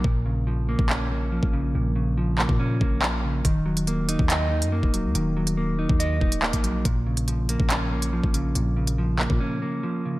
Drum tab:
HH |----------------|----------------|x--xx-x-x--x--x-|x--x----x--x-xx-|
CP |--------x-------|------x-----x---|--------x-------|------------x---|
BD |o------o-----o--|-------o--o-----|o------o-----o--|-------o--o--o--|

HH |x--xx-x-x--x--x-|x--x------------|
CP |--------x-------|------x---------|
BD |o------o-----o--|-------o--------|